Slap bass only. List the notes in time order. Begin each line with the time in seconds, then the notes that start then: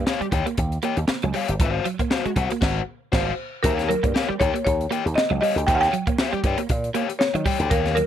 0.21 muted slap bass stroke
0.32 D#2
0.58 D#2
0.97 D#2
1.09 muted slap bass stroke
1.23 C#2
1.49 G1
1.60 G#1
2.00 muted slap bass stroke
2.25 muted slap bass stroke
2.36 C2
2.62 G#1
3.13 G#1
3.64 D#2
4.04 G2
4.30 muted slap bass stroke
4.41 D#2
4.67 D#2
5.06 D#2
5.17 muted slap bass stroke
5.30 C#2
5.56 D2
5.68 D#2
6.07 muted slap bass stroke
6.33 muted slap bass stroke
6.44 G2
6.70 A#2
7.35 D#3
7.60 D2
7.71 D#2